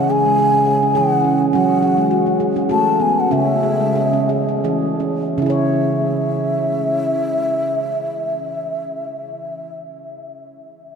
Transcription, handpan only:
Already playing: C#3 C#4
0.10 G#4
0.26 G#3
0.39 G#4
0.54 C#4
0.66 G#4
0.83 C#4
0.95 E3 G#4
1.24 C#4
1.53 F#3 C#4
1.83 F#4
1.97 G#3
2.11 F#4
2.26 C#4
2.40 G#4
2.56 C#4
2.69 A3 F#4
3.00 B3
3.31 C#3 C#4
3.63 G#4
3.80 G#3
3.95 G#4
4.13 C#4
4.29 G#4
4.49 C#4
4.64 E3 G#4
5.00 C#4
5.38 C#3 C#4
5.42 E4
5.46 G#4 C#5

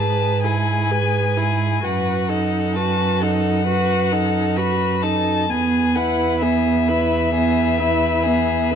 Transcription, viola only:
Already playing: G#4
0.44 E4
0.91 G#4
1.37 E4
1.82 F#4
2.29 D#4
2.75 F#4
3.22 D#4
3.67 F#4
4.12 D#4
4.57 F#4
5.03 D#4
5.50 B3
5.96 E4
6.42 B3
6.90 E4
7.34 B3
7.80 E4
8.26 B3

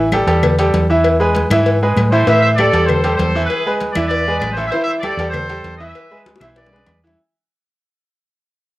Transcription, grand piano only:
0.13 G3 G4 A4
0.28 G3 G4 A4
0.59 G3 G4 A4
0.90 E3 E4 E5
1.20 G#3 G#4 B4
1.52 E3 E4 E5
1.83 G#3 G#4 B4
2.12 E3 E4 E5
2.27 E3 E4 E5
2.58 G3 G4 A4
2.73 G3 G4 A4
3.04 G3 G4 A4
3.35 E3 E4 E5
3.66 G#3 G#4 B4
3.96 E3 E4 E5
4.28 G#3 G#4 B4
4.57 E3 E4 E5
4.73 E3 E4 E5
5.04 G3 G4 A4
5.20 G3 G4 A4
5.49 G3 G4 A4
5.80 E3 E4 E5
6.11 G#3 G#4 B4
6.41 E3 E4 E5
6.72 G#3 G#4 B4
7.04 E3 E4 E5

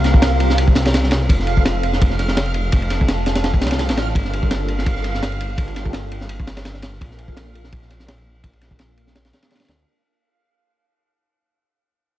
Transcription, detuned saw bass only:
Already playing: C2
0.75 C2
1.29 F1
2.73 F1
3.61 C2
3.89 A1
4.15 G1
5.58 G1
6.47 G1
7.01 A#1
8.44 A#1
9.69 D2

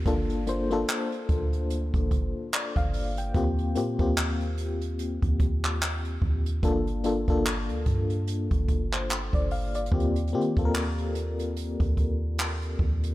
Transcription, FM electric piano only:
0.06 A#3 D4 F4 A4
0.47 A#3 D4 F4 C5
0.71 A#3 D4 F4 A4
2.53 D5
2.77 F5
3.18 G5
3.34 A#3 C4 F4 G4
3.75 A#3 C4 F4 G4
3.99 A#3 C4 F4 G4
6.63 A#3 D4 F4 A4
7.04 A#3 D4 F4 A4
7.28 A#3 D4 F4 A4
8.93 C5
9.34 D5
9.52 F5
9.75 D5
9.92 A#3 C4 F4 G4
10.33 A#3 C4 F4 G4
10.57 A#3 C4 F4 A4
10.65 A#4

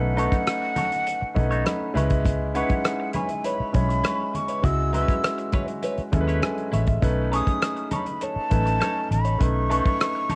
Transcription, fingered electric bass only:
Already playing: B1
0.32 muted fingered electric bass stroke
1.22 muted fingered electric bass stroke
1.37 B1
1.95 C#2
2.70 muted fingered electric bass stroke
3.60 muted fingered electric bass stroke
3.75 B1
4.64 C#2
5.09 muted fingered electric bass stroke
5.98 muted fingered electric bass stroke
6.13 D#2
6.73 A1
7.03 B1
7.47 muted fingered electric bass stroke
8.36 muted fingered electric bass stroke
8.52 A1
9.11 A1
9.41 B1
9.86 muted fingered electric bass stroke

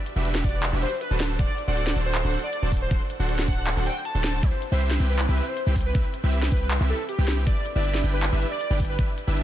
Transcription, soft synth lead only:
0.44 D5
0.82 C5
1.01 B4
1.39 D5
1.68 D5
2.06 C5
2.44 D5
2.82 C5
3.48 F#5
3.86 G5
4.05 A5
4.43 C5
4.72 C5
5.10 B4
5.48 C5
5.86 B4
6.52 B4
6.90 A4
7.09 G4
7.47 D5
7.75 D5
8.14 B4
8.51 D5
8.89 B4

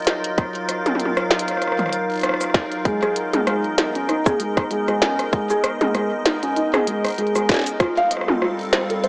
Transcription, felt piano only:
2.85 G#3
3.03 G#4
3.34 G#3
3.47 G#3
3.78 D#4
3.95 C#4
4.09 D#4
4.26 G#4
4.40 G#3
4.71 G#3
4.88 G#3
5.02 C#4
5.33 G#3
5.50 G#4
5.81 G#3
5.95 G#3
6.25 D#4
6.43 C#4
6.56 D#4
6.74 G#4
6.87 G#3
7.18 G#3
7.36 G#3
7.49 C#4
7.80 F4
7.97 F5
8.28 F4
8.42 F4
8.73 C5
8.90 A4
9.04 C5

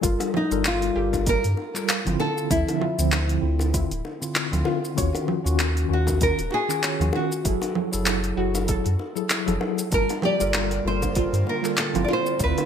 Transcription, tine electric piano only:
0.01 G3 F4 A4 A#4
0.51 G3 F4 A4 A#4
0.95 G3 F4 A4 A#4
1.26 G3 F4 A4 A#4
1.75 G3 F4 A4 A#4
2.05 D3 C4 E4 F4
2.50 D3 F3 C4 E4
2.98 D3 F3 C4 E4
3.41 D3 C4 E4 F4
3.72 D3 C4 E4 F4
4.21 D3 C4 E4 F4
4.51 D3 C4 E4 F4
4.95 D#3 C#4 F4 F#4
5.44 D#3 C#4 F4 F#4
5.88 D#3 C#4 F4 F#4
6.20 D#3 C#4 F4 F#4
6.68 D#3 C#4 F4 F#4
7.00 D#3 C#4 F4 F#4
7.44 F#3 E4 G#4 A4
7.92 F#3 E4 G#4 A4
8.37 F#3 E4 G#4 A4
8.66 F#3 E4 G#4 A4
9.16 F#3 E4 G#4 A4
9.46 F#3 E4 G#4 A4
9.91 G3 F4 A#4 A5
10.40 G3 F4 A4 A#4
10.84 G3 F4 A4 A#4
11.15 G3 F4 A4 A#4
11.62 G3 F4 A4 A#4
11.94 D3 C4 E4 F4
12.37 D3 C4 E4 F4

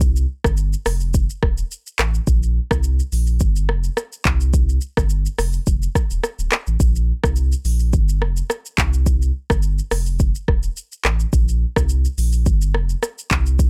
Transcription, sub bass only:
Already playing: C2
0.45 G1
0.86 F1
1.43 D#1
1.99 A1
2.27 A#1
2.71 C2
3.12 A#1
3.41 G1
3.69 F1
4.25 C2
4.97 G1
5.39 F1
5.67 F1
6.11 D#1
6.39 D1
6.67 A1
6.80 A#1
7.24 C2
7.65 A#1
7.93 G1
8.21 F1
8.78 C2
9.50 G1
9.91 F1
10.48 D#1
11.05 A1
11.33 A#1
11.77 C2
12.18 A#1
12.46 G1
12.74 F1
13.31 C2

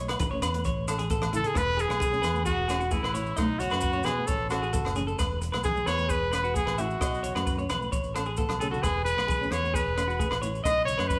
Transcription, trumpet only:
1.35 A4
1.46 G#4
1.57 B4
1.81 G#4
2.45 F#4
2.92 E4
3.37 D#4
3.59 F#4
4.05 G#4
4.27 A4
4.50 F#4
5.64 G#4
5.87 C#5
6.10 B4
6.34 B4
6.56 G#4
6.80 F#4
8.59 A4
8.70 F#4
8.82 G#4
9.04 B4
9.52 C#5
9.75 B4
10.63 D#5
10.85 C#5
11.07 B4

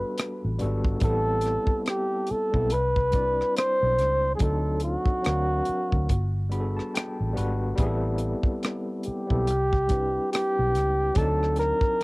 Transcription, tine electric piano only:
Already playing: G3 B3 D4 F#4 A4
0.58 G3 B3 D4 F#4 A4
1.00 G3 B3 C4 E4 A4
2.52 G3 B3 C4 E4
2.57 A4
3.11 G3 C4 D4 E4
3.15 D5
4.38 F#3 C4 D4 D#4
4.43 A4
5.22 F#3 C4 D4 F5
5.27 A#4
6.49 G3 B3 D4 F#4 B5
6.54 G#4
6.60 A4
6.77 A5
6.95 G5
7.33 G3 B3 D4 F#4 F#5
7.38 B4
7.76 G3 B3 C4 E4
7.80 G#4
7.86 A4
9.27 G3 B3 C4 E4
9.31 A4
9.87 G3 C4 D4 E4
9.92 B4
11.14 F#3 C4 D4 D#4
11.18 A5
11.99 F3

